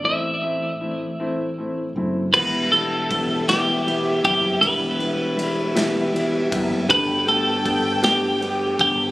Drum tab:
CC |------|x-----|------|------|
RD |------|-xxxxx|xxxxxx|xxxxxx|
SD |------|---o--|---o--|---o--|
BD |------|o-o--o|o----o|o-o--o|